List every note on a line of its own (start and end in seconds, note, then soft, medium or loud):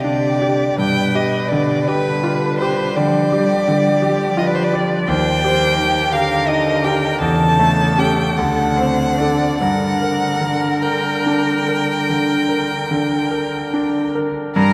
0.00 0.78 C3 soft
0.00 0.81 D3 soft
0.00 0.42 G4 soft
0.00 0.79 G4 soft
0.00 0.78 D5 medium
0.04 0.64 D4 soft
0.42 0.79 G4 soft
0.77 2.93 G2 soft
0.77 1.88 B2 soft
0.77 1.85 B4 soft
0.77 1.17 G5 medium
1.15 1.73 G4 soft
1.15 1.50 D#5 medium
1.49 2.10 D3 soft
1.49 1.89 D5 medium
1.86 2.96 D3 medium
1.86 2.47 G4 soft
1.86 2.98 B4 medium
1.86 2.58 B4 medium
2.23 2.82 F4 soft
2.59 3.19 G4 soft
2.59 2.98 C5 medium
2.96 3.54 D3 soft
2.96 3.31 F3 medium
2.96 4.04 G4 soft
2.96 4.40 D5 medium
3.31 3.67 G3 soft
3.31 3.90 G4 soft
3.67 4.25 D3 soft
3.67 4.05 G3 soft
4.02 5.11 F3 medium
4.02 4.59 G4 soft
4.02 4.39 G4 medium
4.37 4.95 F4 soft
4.37 4.49 D#5 medium
4.42 4.77 B4 medium
4.47 4.56 D5 medium
4.55 4.65 C5 medium
4.64 4.73 D5 medium
4.73 5.09 G4 soft
4.73 5.11 D5 medium
5.08 7.17 D#2 medium
5.08 6.14 D#3 soft
5.08 5.45 C5 medium
5.08 6.14 G5 medium
5.44 6.00 G4 soft
5.44 5.78 C5 medium
5.78 6.35 D#3 soft
5.78 6.16 G4 medium
6.12 7.22 D3 soft
6.12 6.70 G4 soft
6.12 7.22 A#4 soft
6.12 6.50 F5 medium
6.48 7.06 D#4 soft
6.48 6.86 D#5 medium
6.84 7.21 G4 soft
6.84 7.20 G5 medium
7.20 8.34 E2 medium
7.20 8.36 C#3 medium
7.20 8.35 A4 medium
7.20 8.01 A5 medium
7.60 8.22 A3 soft
7.98 8.33 C#4 soft
7.98 8.34 G4 soft
7.98 8.39 G5 medium
8.36 9.57 D2 soft
8.36 9.57 D3 medium
8.36 8.79 A4 medium
8.36 9.58 F#5 medium
8.77 9.45 C4 soft
8.77 9.20 C5 soft
9.18 9.57 D4 soft
9.18 9.57 A4 soft
9.18 9.63 D5 soft
9.59 12.05 G2 soft
9.59 14.28 D3 soft
9.59 14.33 A#4 soft
9.59 10.83 F#5 medium
10.02 10.67 A#4 soft
10.41 11.08 D3 soft
10.82 11.50 A#4 soft
10.82 14.13 G5 medium
11.26 11.93 D4 soft
11.68 12.33 A#4 soft
12.09 12.74 D3 soft
12.49 13.15 A#4 soft
12.91 13.56 D3 soft
13.31 13.97 A#4 soft
13.73 14.39 D4 soft
14.15 14.56 A#4 soft
14.55 14.73 G2 medium
14.55 14.73 A#4 medium
14.55 14.73 A#4 loud